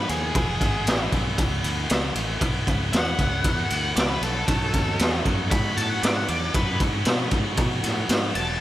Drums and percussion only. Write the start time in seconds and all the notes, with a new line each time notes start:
0.09 ride
0.35 kick, ride
0.61 kick, ride
0.87 snare, ride
1.12 kick, ride
1.38 kick, ride
1.64 ride
1.90 snare, ride
2.15 ride
2.41 kick, ride
2.67 kick, ride
2.93 snare, ride
3.19 kick, ride
3.44 kick, ride
3.70 ride
3.96 snare, ride
4.23 ride
4.48 kick, ride
4.74 kick, ride
4.99 snare, ride
5.25 kick, ride
5.51 kick, ride
5.77 ride
6.03 snare, ride
6.28 ride
6.54 kick, ride
6.80 kick, ride
7.05 snare, ride
7.31 kick, ride
7.57 kick, ride
7.84 snare, ride
8.09 snare, ride
8.35 ride